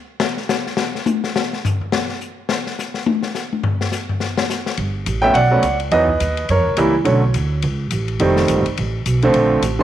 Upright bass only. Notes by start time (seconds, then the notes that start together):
4.78 G1
5.07 A1
5.34 B1
5.63 C#2
5.91 E2
6.20 D#2
6.49 F#2
6.58 E2
6.68 C#2
6.79 C#2
7.06 B1
7.36 D2
7.63 C#2
7.92 A1
8.20 F1
8.50 G1
8.67 muted upright bass stroke
8.78 A1
9.06 B1
9.34 A#1
9.62 A1